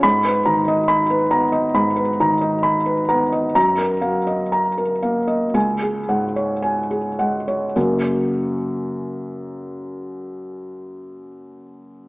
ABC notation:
X:1
M:4/4
L:1/16
Q:1/4=56
K:F#
V:1 name="Felt piano"
z B a d b B a d b B a d b B a d | z A e d a A e d z G f c g G f c | z16 |]
V:2 name="Felt piano" clef=bass
[G,,b]2 D,4 B,2 G,,2 D,4 B,2 | [F,,a]2 F,4 A,2 [C,,g]2 G,,4 G,2 | [F,,C,A,CFA]16 |]